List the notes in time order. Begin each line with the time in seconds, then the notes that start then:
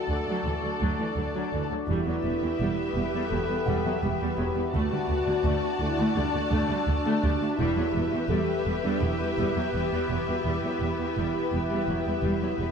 Already playing: A3 D4 F#4 A4 D5 A5
0.08 D2 F#3
0.27 D2 F#3
0.45 D2 E3
0.62 D2 F#3
0.80 D2 F#3
0.99 D2 E3
1.17 D2 F#3
1.35 D2 F#3
1.53 D2 E3
1.71 D2 F#3
1.87 E1 E2 G3 B3 E4 G4 B4 D5 E5
2.07 E2 F#3
2.24 E1 E2 G3
2.43 E2 E3
2.60 E1 E2 G3
2.93 E1 E2 G3 E4
3.14 E2 G3
3.28 E1 A4
3.32 E2 F#3
3.49 E2 G3
3.66 E1 E2 G3 F#5
3.85 E2 F#3
4.02 E1 E2 G3 G4
4.21 E2 G3
4.38 E1 E2 F#3
4.56 E2 G3
4.73 D2 A3 D4 F#4 D5 A5
4.91 D2 G3
5.09 D2 A3
5.26 D2 F#3
5.43 D2 A3 D4 D5
5.79 D2 A3 E4
5.98 D2 A3
6.16 D2 G3 D4
6.34 D2 A3
6.51 D2 A3
6.70 D2 G3
6.87 D2 A3 D4
7.05 D2 A3
7.22 D2 G3
7.41 D2 A3
7.57 E1 E2 G3 E4 G4 B4 E5
7.61 B3 E4 B4
7.77 E2 F#3
7.93 E1 E2 G3
8.12 E2 E3
8.29 E1 E2 G3 G4 A4
8.66 E1 E2 G3
8.83 E2 G3 D4
9.01 E1 E2 F#3 E4
9.19 E2 G3
9.37 E1 E2 G3
9.56 E2 F#3
9.73 E1 E2 G3 G4
9.92 E2 G3
10.09 E1 E2 F#3
10.27 E2 G3 F#4
10.44 E1 E2 G3 E4
10.64 E2 F#3
10.80 E1 E2 G3
10.99 E2 E3
11.17 E1 E2 G3
11.52 E1 E2 G3
11.71 E2 G3
11.87 E1 E2 F#3
12.07 E2 G3
12.24 E1 E2 G3
12.41 E2 F#3
12.59 E1 E2 G3